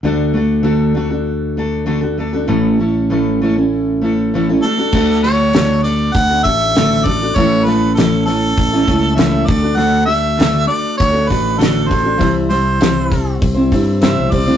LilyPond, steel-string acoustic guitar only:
\new Staff \with { instrumentName = "Steel-string acoustic guitar" } { \time 4/4 \key d \major \tempo 4 = 99 <d a d' fis' a'>8 <a d' fis' a'>8 <d a d' fis' a'>8 <a d' fis' a'>16 <d' fis' a'>8. <a d' fis' a'>8 <d a d' fis' a'>16 <d' fis' a'>16 <a d' fis' a'>16 <d' fis' a'>16 | <a, e a cis' e' a'>8 <a cis' e' a'>8 <a, e a cis' e' a'>8 <a cis' e' a'>16 <a cis' e' a'>8. <a cis' e' a'>8 <a, e a cis' e' a'>16 <a cis' e' a'>16 <a d' fis' a'>16 <d' fis' a'>16 | <d a d' fis' a'>8 <a d' fis' a'>8 <d a d' fis' a'>8 <a d' fis' a'>8. <d' fis' a'>16 <a d' fis' a'>8 <d a d' fis' a'>8 <a d' fis' a'>16 <d' fis' a'>16 | <a, e a cis' e' a'>8 <a cis' e' a'>8 <a, e a cis' e' a'>8 <a cis' e' a'>8. <a cis' e' a'>16 <a cis' e' a'>8 <a, e a cis' e' a'>8 <a d' fis' a'>16 <d' fis' a'>16 |
<d a d' fis' a'>8 <a d' fis' a'>8 <d a d' fis' a'>8 <a d' fis' a'>8. <d' fis' a'>16 <a d' fis' a'>8 <d a d' fis' a'>8 <a d' fis' a'>16 <d' fis' a'>16 | <c e g c' e' c''>8 <g c' e' c''>8 <c e g c' e' c''>8 <g c' e' c''>8. <g c' e' c''>16 <g c' e' c''>8 <c e g c' e' c''>8 <g c' e' c''>16 <g c' e' c''>16 | }